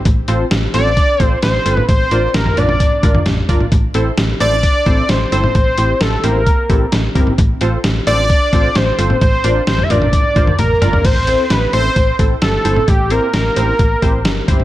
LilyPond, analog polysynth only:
\new Staff \with { instrumentName = "Analog polysynth" } { \time 4/4 \key a \minor \tempo 4 = 131 r8 <c' f' a' c''>8 r8 <c' f' a' c''>8 r8 <c' f' a' c''>8 r8 <c' f' a' c''>8 | r8 <d' f' bes' d''>8 r8 <d' f' bes' d''>8 r8 <d' f' bes' d''>8 r8 <d' f' bes' d''>8 | r8 <c' e' a' c''>8 r8 <c' e' a' c''>8 r8 <c' e' a' c''>8 r8 <c' e' a' c''>8 | r8 <c' e' g' c''>8 r8 <c' e' g' c''>8 r8 <c' e' g' a'>8 r8 <c' e' g' bes'>8 |
r8 <c' f' a' c''>8 r8 <c' f' a' c''>8 r8 <c' f' a' c''>8 r8 <c' f' a' c''>8 | r8 <d' f' bes' d''>8 r8 <d' f' bes' d''>8 r8 <d' f' bes' c''>8 r8 <d' f' bes' d''>8 | r8 <c' e' a' c''>8 r8 <c' e' a' c''>8 r8 <c' e' a' c''>8 r8 <c' e' a' c''>8 | r8 <c' e' g' c''>8 r8 <c' e' g' c''>8 r8 <c' e' g' c''>8 r8 <c' e' g' c''>8 | }